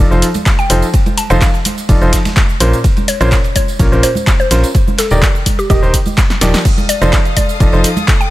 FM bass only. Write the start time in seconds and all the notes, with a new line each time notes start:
0.11 F1
0.70 F1
1.30 F1
1.89 F1
2.02 F1
2.60 A#1
3.21 A#1
3.79 A#1
3.92 A#1
4.51 A#1
5.11 D#1
5.70 D#1
5.83 D#1
6.41 D#1
7.02 F1
7.60 F1
7.73 F1